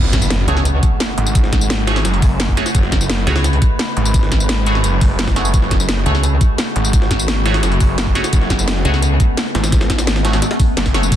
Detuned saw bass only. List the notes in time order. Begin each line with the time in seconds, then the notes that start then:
Already playing: F#1
1.18 G#1
2.05 F#1
2.75 F#1
3.97 G#1
4.84 F#1
5.54 F#1
6.76 G#1
7.63 F#1
8.33 F#1
9.55 G#1
10.77 F#1
11.12 F#1